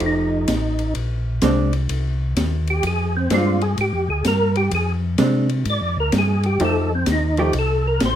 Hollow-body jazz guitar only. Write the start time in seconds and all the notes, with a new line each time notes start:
Already playing: F3 A3 D#4 G4
1.42 G#3 C4 D4
3.31 G#3 C4 D4
5.19 G#3 C4 D4
6.61 F3 A3 D#4 G4
7.38 F3 A3 D#4 G4